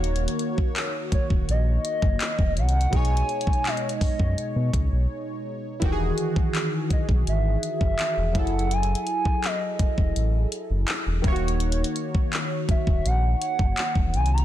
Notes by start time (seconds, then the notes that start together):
Already playing: D#1 D#3 A#3 F#4 C#5
0.04 closed hi-hat
0.16 closed hi-hat
0.28 closed hi-hat
0.39 closed hi-hat
0.58 kick
0.76 clap, closed hi-hat
1.12 D#1 C#5, kick, closed hi-hat
1.30 D#1, kick
1.49 A#1 D#5, closed hi-hat
1.85 closed hi-hat
2.02 F#1, kick
2.21 clap, closed hi-hat
2.39 E1, kick
2.57 C2 F#5, closed hi-hat
2.69 closed hi-hat
2.81 closed hi-hat
2.90 B1 B2 G#3, kick, closed hi-hat
2.94 D#4 C#5 G#5
3.05 closed hi-hat
3.17 closed hi-hat
3.29 closed hi-hat
3.41 closed hi-hat
3.47 kick
3.53 closed hi-hat
3.65 D#5, clap, closed hi-hat
3.77 closed hi-hat
3.89 closed hi-hat
4.01 F#2, kick, open hi-hat
4.19 F#2, kick
4.38 closed hi-hat
4.56 B2
4.74 C#2, kick, closed hi-hat
4.92 B1
5.80 E1 D#3 E3, kick, closed hi-hat
5.84 F#4 G4
5.92 G#4
6.18 closed hi-hat
6.36 kick
6.55 clap, closed hi-hat
6.90 B1 D#5, kick, closed hi-hat
7.09 B1, kick
7.27 G#1 E5, closed hi-hat
7.63 closed hi-hat
7.81 F#1, kick
7.99 clap, closed hi-hat
8.17 E1
8.33 F#1 F#3 E4, kick, closed hi-hat
8.37 G#4 A4 F#5
8.47 closed hi-hat
8.59 closed hi-hat
8.71 G#5, closed hi-hat
8.83 closed hi-hat
8.95 closed hi-hat
9.07 closed hi-hat
9.25 kick
9.44 D#5, clap, closed hi-hat
9.79 E1, kick, closed hi-hat
9.98 E1, kick
10.16 A1, closed hi-hat
10.52 closed hi-hat
10.70 F#1
10.88 clap, closed hi-hat
11.06 E1
11.22 D#1 D#3 A#3, kick, closed hi-hat
11.26 E4 C#5
11.32 F#4, closed hi-hat
11.48 closed hi-hat
11.60 closed hi-hat
11.72 closed hi-hat
11.84 closed hi-hat
11.96 closed hi-hat
12.15 kick
12.33 clap, closed hi-hat
12.69 D#1 E5, kick, closed hi-hat
12.87 D#1, kick
13.05 A#1 F#5, closed hi-hat
13.42 closed hi-hat
13.59 F#1, kick
13.77 clap, closed hi-hat
13.95 E1, kick
14.14 C2 G#5, closed hi-hat
14.26 closed hi-hat
14.33 A#5
14.38 closed hi-hat